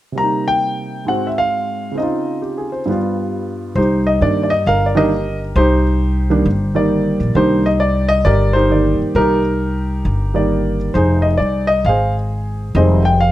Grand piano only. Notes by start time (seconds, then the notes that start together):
0.12 C3 G3
0.18 A#3 A#5
0.23 D#4
0.48 G5
1.05 G#2 G#3 C4 F#5
1.10 F#4
1.27 E5
1.38 F5
1.91 C#3 C4
1.98 D#4 D#5
2.03 F4
2.42 G4
2.57 G#4
2.72 C5
2.86 G2 G3 B3
2.90 F4
3.76 D#4 G4 C5
4.07 D#5
4.21 D#3 G3 A#3 D4 D5
4.43 D5
4.50 D#5
4.67 A#4 F5
4.86 D5
4.95 D#3 G3 A#3 D4 G4 A#4 D#5
5.56 D#4 G4 C5
6.30 D#3 G3 A#3 D4
6.75 D#3 G3 A#3 D5
7.35 D#3 G3 A#3 D4 D#4 G4 C5
7.66 D#5
7.80 D5
8.09 D#5
8.25 G4 A#4 D5
8.53 D#4 G4 C5
8.70 D#3 G3 A#3 D5
9.16 D#4 G4 A#4
10.34 D#3 G3 A#3 D5
10.94 D#4 G#4 C5
11.22 D#5
11.38 D5
11.67 D#5
11.86 G#4 C5 F5
12.75 D#3 G3 G#3 C4 G#4 C5 D#5
13.05 G5
13.21 F5